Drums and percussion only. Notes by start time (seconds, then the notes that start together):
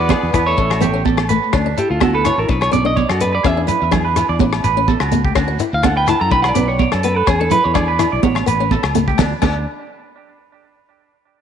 0.09 kick, cross-stick, high conga, low conga, low agogo, shekere
0.33 kick, cross-stick, closed hi-hat, low agogo, shekere
0.46 shekere
0.57 kick, muted conga, shekere
0.70 cross-stick, low agogo
0.81 closed hi-hat, high conga, low conga, shekere
0.95 shekere
1.05 kick, high conga, shekere
1.17 cross-stick, low agogo
1.29 closed hi-hat, muted conga, shekere
1.43 shekere
1.53 kick, cross-stick, muted conga, low agogo, shekere
1.77 closed hi-hat, shekere
1.91 shekere
2.00 kick, cross-stick, muted conga, high conga, low agogo, shekere
2.25 cross-stick, closed hi-hat, low agogo, shekere
2.49 kick, muted conga, shekere
2.61 cross-stick, low agogo
2.73 closed hi-hat, muted conga, high conga, shekere
2.86 shekere
2.97 kick, high conga, shekere
3.09 cross-stick, low agogo
3.21 closed hi-hat, shekere
3.44 kick, cross-stick, muted conga, low agogo, shekere
3.68 closed hi-hat, low conga, shekere
3.81 shekere
3.92 kick, cross-stick, muted conga, low conga, low agogo, shekere
4.16 cross-stick, closed hi-hat, low agogo, shekere
4.39 kick, muted conga, high conga, shekere
4.53 cross-stick, low agogo
4.64 closed hi-hat, muted conga, shekere
4.77 shekere
4.88 kick, high conga, shekere
5.00 cross-stick, low agogo
5.12 closed hi-hat, high conga, shekere
5.25 kick
5.36 kick, cross-stick, low agogo, shekere
5.59 closed hi-hat, shekere
5.72 shekere
5.83 kick, cross-stick, muted conga, high conga, low agogo, shekere
6.07 cross-stick, closed hi-hat, low agogo, shekere
6.31 kick, muted conga, shekere
6.44 cross-stick, low agogo
6.55 closed hi-hat, muted conga, high conga, shekere
6.69 shekere
6.79 kick, high conga, shekere
6.92 cross-stick, low agogo
7.03 closed hi-hat
7.27 kick, cross-stick, muted conga, low agogo, shekere
7.50 closed hi-hat, low conga, shekere
7.64 shekere
7.75 kick, cross-stick, muted conga, low conga, low agogo, shekere
7.99 cross-stick, closed hi-hat, low agogo, shekere
8.23 kick, muted conga, high conga, shekere
8.35 cross-stick, low agogo
8.47 closed hi-hat, muted conga, shekere
8.61 shekere
8.71 kick, high conga, shekere
8.83 cross-stick, low agogo
8.95 closed hi-hat, high conga, shekere
9.08 kick, shekere
9.18 kick, snare, muted conga, low agogo, shekere
9.42 kick, crash, muted conga, low agogo, shekere